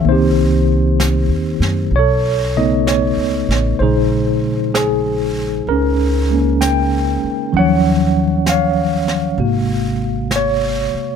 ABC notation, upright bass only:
X:1
M:4/4
L:1/8
Q:"Swing" 1/4=64
K:Bbdor
V:1 name="Upright bass" clef=bass
C,,2- (3C,, E,, _G,, =B,,,2- (3B,,, ^C,, =A,,, | B,,,4 D,,3 z | E,,4 A,,,3 z |]